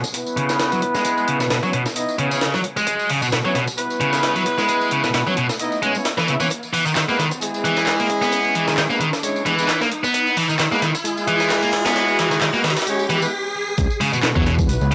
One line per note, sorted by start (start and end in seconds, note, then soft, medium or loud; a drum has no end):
0.00 kick medium
0.00 tambourine medium
0.00 riser medium
0.13 1.60 B3 loud
0.13 1.60 E4 medium
0.13 1.60 B4 loud
0.13 closed hi-hat medium
0.13 tambourine medium
0.26 tambourine soft
0.37 0.71 C#3 medium
0.37 closed hi-hat medium
0.49 snare medium
0.49 tambourine medium
0.59 snare loud
0.59 closed hi-hat medium
0.59 tambourine medium
0.72 0.78 F#3 medium
0.72 closed hi-hat soft
0.72 tambourine soft
0.82 kick medium
0.82 closed hi-hat medium
0.95 1.27 G#3 medium
0.95 snare soft
0.95 tambourine medium
1.05 kick loud
1.05 closed hi-hat medium
1.05 tambourine medium
1.18 tambourine soft
1.28 1.39 C#3 medium
1.28 closed hi-hat medium
1.40 1.44 B2 medium
1.40 snare soft
1.40 tambourine medium
1.50 1.55 B2 medium
1.50 snare loud
1.50 closed hi-hat medium
1.50 tambourine medium
1.63 1.70 F#3 loud
1.63 1.76 B3 medium
1.63 1.76 C#4 medium
1.63 1.76 E4 medium
1.63 1.76 C#5 medium
1.63 kick medium
1.63 tambourine soft
1.73 1.81 B2 loud
1.73 closed hi-hat medium
1.86 snare soft
1.86 tambourine medium
1.95 2.16 B3 medium
1.95 2.16 D#4 medium
1.95 2.16 E4 medium
1.95 2.16 D#5 medium
1.95 closed hi-hat medium
1.95 tambourine medium
2.08 tambourine soft
2.18 2.53 C#3 medium
2.18 2.28 B3 medium
2.18 2.28 C#4 medium
2.18 2.28 E4 medium
2.18 2.28 C#5 medium
2.18 closed hi-hat medium
2.31 2.39 B3 medium
2.31 2.39 C#4 medium
2.31 2.39 E4 medium
2.31 2.39 C#5 medium
2.31 tambourine medium
2.41 snare loud
2.41 closed hi-hat medium
2.54 2.60 F#3 medium
2.54 snare medium
2.54 tambourine soft
2.64 closed hi-hat medium
2.77 3.09 G#3 medium
2.77 kick loud
2.77 tambourine medium
2.87 kick loud
2.87 closed hi-hat medium
2.87 tambourine soft
2.99 tambourine soft
3.10 3.21 C#3 medium
3.10 open hi-hat medium
3.22 3.26 B2 medium
3.22 tambourine medium
3.32 3.37 B2 medium
3.32 snare loud
3.32 closed hi-hat medium
3.44 3.51 F#3 loud
3.44 3.58 B3 medium
3.44 3.58 C#4 loud
3.44 3.58 E4 medium
3.44 3.58 C#5 loud
3.44 kick medium
3.44 tambourine soft
3.55 3.63 B2 loud
3.55 snare soft
3.55 closed hi-hat medium
3.67 kick medium
3.67 tambourine medium
3.77 5.23 B3 loud
3.77 5.23 E4 medium
3.77 5.23 B4 loud
3.77 closed hi-hat medium
3.77 tambourine medium
3.90 tambourine soft
4.00 4.35 C#3 medium
4.00 closed hi-hat medium
4.13 snare soft
4.13 tambourine medium
4.23 snare loud
4.23 closed hi-hat medium
4.23 tambourine soft
4.36 4.42 F#3 loud
4.36 closed hi-hat soft
4.36 tambourine soft
4.46 kick medium
4.46 closed hi-hat medium
4.58 4.90 G#3 medium
4.58 snare soft
4.58 tambourine medium
4.69 kick loud
4.69 closed hi-hat medium
4.69 tambourine soft
4.81 tambourine soft
4.91 5.03 C#3 medium
4.91 closed hi-hat medium
5.04 5.08 B2 medium
5.04 snare soft
5.04 tambourine medium
5.14 5.19 B2 medium
5.14 snare loud
5.14 closed hi-hat medium
5.14 tambourine medium
5.27 5.33 F#3 medium
5.27 5.40 B3 medium
5.27 5.40 C#4 medium
5.27 5.40 E4 medium
5.27 5.40 C#5 medium
5.27 kick medium
5.27 tambourine soft
5.37 5.45 B2 loud
5.37 closed hi-hat medium
5.49 snare medium
5.49 tambourine medium
5.59 5.80 B3 medium
5.59 5.80 D#4 medium
5.59 5.80 E4 medium
5.59 5.80 D#5 loud
5.59 closed hi-hat medium
5.59 tambourine medium
5.72 tambourine soft
5.82 5.94 G#3 medium
5.82 5.92 B3 medium
5.82 5.92 C#4 medium
5.82 5.92 E4 medium
5.82 5.92 C#5 loud
5.82 closed hi-hat medium
5.94 6.08 B3 medium
5.94 6.08 C#4 medium
5.94 6.08 E4 medium
5.94 6.08 C#5 medium
5.94 tambourine medium
6.05 snare loud
6.05 closed hi-hat medium
6.05 tambourine soft
6.17 6.27 E3 medium
6.17 snare medium
6.17 tambourine soft
6.27 6.33 C#3 medium
6.27 6.38 B3 medium
6.27 6.38 E4 medium
6.27 6.38 E5 medium
6.27 closed hi-hat medium
6.40 6.47 E3 medium
6.40 6.48 B3 medium
6.40 6.48 C#4 medium
6.40 6.48 E4 medium
6.40 6.48 C#5 loud
6.40 kick medium
6.40 tambourine medium
6.50 kick loud
6.50 closed hi-hat medium
6.50 tambourine soft
6.63 tambourine soft
6.73 6.85 E3 medium
6.73 open hi-hat medium
6.86 6.90 D#3 medium
6.86 tambourine medium
6.96 7.01 D#3 medium
6.96 snare loud
6.96 clap loud
6.96 closed hi-hat medium
6.96 tambourine medium
7.08 7.21 G#3 medium
7.08 7.15 A#3 loud
7.08 7.21 B3 medium
7.08 7.21 E4 medium
7.08 7.21 B4 loud
7.08 kick medium
7.08 tambourine soft
7.19 7.27 D#3 loud
7.19 snare soft
7.19 closed hi-hat medium
7.31 kick medium
7.31 tambourine medium
7.41 8.87 G#3 loud
7.41 8.87 E4 medium
7.41 8.87 G#4 loud
7.41 closed hi-hat medium
7.41 tambourine soft
7.54 tambourine soft
7.65 7.98 E3 medium
7.65 closed hi-hat medium
7.77 snare medium
7.77 tambourine medium
7.87 snare loud
7.87 clap loud
7.87 closed hi-hat medium
7.87 tambourine soft
8.00 8.06 A#3 medium
8.00 closed hi-hat soft
8.00 tambourine soft
8.10 kick medium
8.10 closed hi-hat medium
8.22 8.54 B3 medium
8.22 snare soft
8.22 tambourine medium
8.32 kick loud
8.32 closed hi-hat medium
8.32 tambourine soft
8.45 tambourine soft
8.55 8.66 E3 medium
8.55 closed hi-hat medium
8.68 8.71 D#3 medium
8.68 snare medium
8.68 tambourine medium
8.78 8.83 D#3 medium
8.78 snare loud
8.78 clap loud
8.78 closed hi-hat medium
8.78 tambourine medium
8.90 9.03 G#3 medium
8.90 8.97 A#3 loud
8.90 9.03 B3 medium
8.90 9.03 E4 medium
8.90 9.03 B4 medium
8.90 kick medium
8.90 tambourine soft
9.00 9.08 D#3 loud
9.00 closed hi-hat medium
9.13 snare medium
9.13 tambourine medium
9.23 9.43 G#3 medium
9.23 9.43 C#4 medium
9.23 9.43 E4 medium
9.23 9.43 C#5 medium
9.23 closed hi-hat medium
9.23 tambourine medium
9.36 tambourine soft
9.45 9.80 E3 medium
9.45 9.55 G#3 medium
9.45 9.55 B3 medium
9.45 9.55 E4 medium
9.45 9.55 B4 medium
9.45 closed hi-hat medium
9.58 9.66 G#3 medium
9.58 9.66 B3 medium
9.58 9.66 E4 medium
9.58 9.66 B4 loud
9.58 tambourine medium
9.69 snare loud
9.69 clap loud
9.69 closed hi-hat medium
9.69 tambourine soft
9.81 9.87 A#3 loud
9.81 snare medium
9.81 tambourine soft
9.92 closed hi-hat medium
10.04 10.36 B3 medium
10.04 kick medium
10.04 tambourine medium
10.14 kick loud
10.14 closed hi-hat medium
10.14 tambourine medium
10.27 tambourine soft
10.37 10.48 E3 medium
10.37 open hi-hat medium
10.49 10.53 D#3 medium
10.49 tambourine medium
10.59 10.64 D#3 medium
10.59 snare loud
10.59 clap loud
10.59 closed hi-hat medium
10.59 tambourine medium
10.71 10.85 G#3 loud
10.71 10.78 A#3 medium
10.71 10.85 B3 loud
10.71 10.85 E4 medium
10.71 10.85 B4 loud
10.71 kick medium
10.71 tambourine soft
10.82 10.90 D#3 loud
10.82 snare soft
10.82 closed hi-hat medium
10.95 kick loud
10.95 tambourine medium
11.04 12.51 G#3 loud
11.04 12.51 E4 loud
11.04 12.51 G#4 loud
11.04 closed hi-hat medium
11.04 tambourine medium
11.17 tambourine soft
11.28 11.62 E3 medium
11.28 closed hi-hat medium
11.40 snare medium
11.40 tambourine medium
11.50 snare loud
11.50 clap loud
11.50 closed hi-hat medium
11.50 tambourine medium
11.63 11.69 A#3 loud
11.63 closed hi-hat soft
11.63 tambourine soft
11.73 snare loud
11.73 closed hi-hat medium
11.85 12.18 B3 medium
11.85 snare loud
11.85 closed hi-hat medium
11.85 tambourine medium
11.96 snare loud
11.96 closed hi-hat medium
11.96 tambourine medium
12.08 tambourine soft
12.19 12.30 E3 medium
12.19 snare loud
12.19 closed hi-hat medium
12.31 12.35 D#3 medium
12.31 snare soft
12.31 tambourine medium
12.41 12.46 D#3 medium
12.41 snare loud
12.41 clap loud
12.41 closed hi-hat medium
12.41 tambourine medium
12.53 12.67 G#3 medium
12.53 12.60 A#3 loud
12.53 12.67 B3 medium
12.53 12.67 E4 medium
12.53 12.67 B4 medium
12.53 kick loud
12.53 tambourine soft
12.64 12.72 D#3 loud
12.64 snare medium
12.64 closed hi-hat medium
12.70 snare medium
12.70 closed hi-hat medium
12.76 snare medium
12.76 closed hi-hat medium
12.76 tambourine medium
12.82 snare medium
12.82 closed hi-hat medium
12.86 13.07 G#3 loud
12.86 13.07 C#4 medium
12.86 13.07 E4 medium
12.86 13.07 C#5 loud
12.86 closed hi-hat medium
12.86 tambourine medium
12.99 tambourine soft
13.09 13.21 E3 medium
13.09 13.19 G#3 medium
13.09 13.19 B3 medium
13.09 13.19 E4 medium
13.09 13.19 B4 medium
13.09 closed hi-hat medium
13.21 13.30 G#3 medium
13.21 13.30 B3 medium
13.21 13.30 E4 medium
13.21 13.30 B4 loud
13.21 tambourine medium
13.78 13.87 C#2 loud
13.78 kick loud
13.78 closed hi-hat medium
13.78 tambourine medium
13.90 tambourine soft
14.00 14.12 C#3 medium
14.00 open hi-hat medium
14.00 high conga medium
14.13 14.17 B2 medium
14.13 tambourine medium
14.13 low conga medium
14.23 14.28 B2 medium
14.23 snare loud
14.23 clap loud
14.23 closed hi-hat medium
14.23 tambourine medium
14.35 14.70 E2 medium
14.35 14.42 F#3 loud
14.35 14.49 B3 loud
14.35 14.49 C#4 loud
14.35 14.49 E4 medium
14.35 14.49 C#5 loud
14.35 kick medium
14.35 tambourine soft
14.46 14.54 B2 loud
14.46 snare soft
14.46 closed hi-hat medium
14.58 kick loud
14.58 tambourine medium
14.58 high conga medium
14.68 14.78 B1 medium
14.68 14.95 B3 loud
14.68 14.95 E4 loud
14.68 14.95 B4 loud
14.68 closed hi-hat medium
14.68 tambourine medium
14.68 muted conga soft
14.81 14.95 C#2 medium
14.81 tambourine soft
14.91 14.95 C#3 medium
14.91 closed hi-hat medium
14.91 muted conga medium